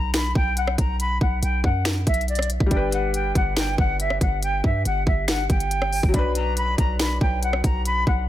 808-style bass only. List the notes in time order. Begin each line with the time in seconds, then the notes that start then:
Already playing: B1
0.35 B1
0.78 B1
1.21 B1
1.43 B1
1.64 F#2
2.07 B1
2.60 B1
2.71 G1
3.35 G1
3.78 G1
4.21 G1
4.64 G2
4.86 G1
5.07 G1
5.50 G1
6.03 G1
6.14 B1
6.78 B1
7.21 B1
7.64 B1
8.07 B1